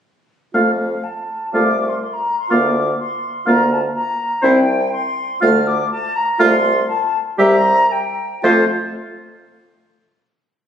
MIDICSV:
0, 0, Header, 1, 6, 480
1, 0, Start_track
1, 0, Key_signature, -1, "major"
1, 0, Tempo, 488599
1, 538, Time_signature, 4, 2, 24, 8
1, 6769, Tempo, 509771
1, 10332, End_track
2, 0, Start_track
2, 0, Title_t, "Flute"
2, 0, Program_c, 0, 73
2, 533, Note_on_c, 0, 77, 58
2, 1016, Note_on_c, 0, 81, 56
2, 1031, Note_off_c, 0, 77, 0
2, 1498, Note_off_c, 0, 81, 0
2, 1504, Note_on_c, 0, 86, 77
2, 1852, Note_on_c, 0, 84, 46
2, 1867, Note_off_c, 0, 86, 0
2, 1959, Note_off_c, 0, 84, 0
2, 1965, Note_on_c, 0, 84, 59
2, 2094, Note_on_c, 0, 82, 62
2, 2109, Note_off_c, 0, 84, 0
2, 2338, Note_off_c, 0, 82, 0
2, 2349, Note_on_c, 0, 84, 65
2, 2462, Note_on_c, 0, 86, 74
2, 2477, Note_off_c, 0, 84, 0
2, 2934, Note_off_c, 0, 86, 0
2, 2940, Note_on_c, 0, 84, 71
2, 3401, Note_off_c, 0, 84, 0
2, 3425, Note_on_c, 0, 82, 84
2, 3647, Note_off_c, 0, 82, 0
2, 3657, Note_on_c, 0, 81, 71
2, 3716, Note_off_c, 0, 81, 0
2, 3880, Note_on_c, 0, 82, 84
2, 4353, Note_on_c, 0, 79, 96
2, 4368, Note_off_c, 0, 82, 0
2, 4830, Note_off_c, 0, 79, 0
2, 4836, Note_on_c, 0, 84, 99
2, 5310, Note_off_c, 0, 84, 0
2, 5315, Note_on_c, 0, 89, 111
2, 5569, Note_on_c, 0, 86, 98
2, 5584, Note_off_c, 0, 89, 0
2, 5803, Note_off_c, 0, 86, 0
2, 5809, Note_on_c, 0, 81, 107
2, 6048, Note_on_c, 0, 82, 98
2, 6063, Note_off_c, 0, 81, 0
2, 6288, Note_on_c, 0, 84, 116
2, 6303, Note_off_c, 0, 82, 0
2, 6758, Note_off_c, 0, 84, 0
2, 6764, Note_on_c, 0, 81, 104
2, 7027, Note_off_c, 0, 81, 0
2, 7241, Note_on_c, 0, 82, 106
2, 7733, Note_on_c, 0, 79, 87
2, 7748, Note_off_c, 0, 82, 0
2, 8227, Note_off_c, 0, 79, 0
2, 8237, Note_on_c, 0, 77, 97
2, 8497, Note_off_c, 0, 77, 0
2, 10332, End_track
3, 0, Start_track
3, 0, Title_t, "Oboe"
3, 0, Program_c, 1, 68
3, 534, Note_on_c, 1, 77, 47
3, 706, Note_off_c, 1, 77, 0
3, 1515, Note_on_c, 1, 77, 40
3, 1679, Note_off_c, 1, 77, 0
3, 2462, Note_on_c, 1, 77, 52
3, 2629, Note_off_c, 1, 77, 0
3, 3400, Note_on_c, 1, 77, 50
3, 3567, Note_off_c, 1, 77, 0
3, 4345, Note_on_c, 1, 72, 62
3, 4516, Note_off_c, 1, 72, 0
3, 5314, Note_on_c, 1, 77, 63
3, 5484, Note_off_c, 1, 77, 0
3, 6282, Note_on_c, 1, 77, 82
3, 6453, Note_off_c, 1, 77, 0
3, 7240, Note_on_c, 1, 76, 75
3, 7408, Note_off_c, 1, 76, 0
3, 8232, Note_on_c, 1, 72, 82
3, 8429, Note_off_c, 1, 72, 0
3, 10332, End_track
4, 0, Start_track
4, 0, Title_t, "Clarinet"
4, 0, Program_c, 2, 71
4, 532, Note_on_c, 2, 65, 40
4, 705, Note_off_c, 2, 65, 0
4, 1512, Note_on_c, 2, 65, 39
4, 1678, Note_off_c, 2, 65, 0
4, 2458, Note_on_c, 2, 65, 51
4, 2626, Note_off_c, 2, 65, 0
4, 3408, Note_on_c, 2, 65, 52
4, 3572, Note_off_c, 2, 65, 0
4, 4355, Note_on_c, 2, 64, 64
4, 4522, Note_off_c, 2, 64, 0
4, 5318, Note_on_c, 2, 65, 69
4, 5487, Note_off_c, 2, 65, 0
4, 6281, Note_on_c, 2, 65, 84
4, 6452, Note_off_c, 2, 65, 0
4, 7232, Note_on_c, 2, 67, 74
4, 7402, Note_off_c, 2, 67, 0
4, 8226, Note_on_c, 2, 65, 79
4, 8424, Note_off_c, 2, 65, 0
4, 10332, End_track
5, 0, Start_track
5, 0, Title_t, "French horn"
5, 0, Program_c, 3, 60
5, 530, Note_on_c, 3, 57, 42
5, 704, Note_off_c, 3, 57, 0
5, 1510, Note_on_c, 3, 57, 44
5, 1676, Note_off_c, 3, 57, 0
5, 2464, Note_on_c, 3, 58, 46
5, 2631, Note_off_c, 3, 58, 0
5, 3407, Note_on_c, 3, 58, 54
5, 3571, Note_off_c, 3, 58, 0
5, 4353, Note_on_c, 3, 60, 64
5, 4521, Note_off_c, 3, 60, 0
5, 5327, Note_on_c, 3, 57, 76
5, 5493, Note_off_c, 3, 57, 0
5, 6282, Note_on_c, 3, 57, 69
5, 6453, Note_off_c, 3, 57, 0
5, 7233, Note_on_c, 3, 55, 66
5, 7403, Note_off_c, 3, 55, 0
5, 8229, Note_on_c, 3, 57, 75
5, 8426, Note_off_c, 3, 57, 0
5, 10332, End_track
6, 0, Start_track
6, 0, Title_t, "Bassoon"
6, 0, Program_c, 4, 70
6, 531, Note_on_c, 4, 41, 49
6, 943, Note_off_c, 4, 41, 0
6, 1507, Note_on_c, 4, 36, 51
6, 1904, Note_off_c, 4, 36, 0
6, 2473, Note_on_c, 4, 38, 56
6, 2865, Note_off_c, 4, 38, 0
6, 3415, Note_on_c, 4, 38, 59
6, 3804, Note_off_c, 4, 38, 0
6, 4350, Note_on_c, 4, 36, 79
6, 4753, Note_off_c, 4, 36, 0
6, 5327, Note_on_c, 4, 38, 78
6, 5726, Note_off_c, 4, 38, 0
6, 6291, Note_on_c, 4, 36, 96
6, 6693, Note_off_c, 4, 36, 0
6, 7244, Note_on_c, 4, 36, 85
6, 7645, Note_off_c, 4, 36, 0
6, 8221, Note_on_c, 4, 41, 90
6, 8421, Note_off_c, 4, 41, 0
6, 10332, End_track
0, 0, End_of_file